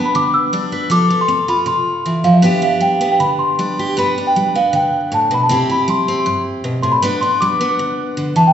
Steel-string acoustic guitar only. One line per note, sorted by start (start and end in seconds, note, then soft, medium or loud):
0.00 0.11 G3 medium
0.00 0.90 B3 medium
0.00 0.52 D4 medium
0.00 0.71 B4 medium
0.15 0.49 D3 medium
0.53 0.87 G3 medium
0.53 0.90 D4 medium
0.72 0.89 B4 medium
0.90 1.25 F3 medium
0.90 1.47 F4 medium
0.90 1.09 A4 medium
1.10 2.42 A4 medium
1.28 1.63 C4 medium
1.48 2.42 F4 medium
1.66 2.01 C3 medium
2.06 2.25 E3 medium
2.24 2.44 F3 medium
2.42 2.77 G2 medium
2.42 3.00 B3 medium
2.42 2.61 D4 medium
2.42 3.79 G4 medium
2.62 3.58 D4 medium
2.81 3.16 G3 medium
3.01 3.94 B3 medium
3.20 3.55 D3 medium
3.59 3.93 G3 medium
3.59 3.97 D4 medium
3.79 3.98 G4 medium
3.97 4.31 G2 medium
3.97 4.54 B3 medium
3.97 4.16 D4 medium
3.97 5.48 B4 medium
4.18 5.50 D4 medium
4.36 4.70 G3 medium
4.55 5.48 B3 medium
4.73 5.07 D3 medium
5.12 5.30 A2 medium
5.31 5.50 B2 medium
5.49 5.84 C3 medium
5.49 6.07 C4 medium
5.49 5.68 E4 medium
5.49 7.03 G4 medium
5.69 7.00 E4 medium
5.88 6.22 G3 medium
6.08 7.01 C4 medium
6.26 6.60 G2 medium
6.64 6.83 B2 medium
6.83 7.02 A2 medium
7.02 7.37 G2 medium
7.02 7.59 B3 medium
7.02 7.21 D4 medium
7.02 8.53 B4 medium
7.23 8.53 D4 medium
7.42 7.75 G3 medium
7.61 8.53 B3 medium
7.79 8.13 D3 medium
8.17 8.35 D3 medium
8.36 8.53 E3 medium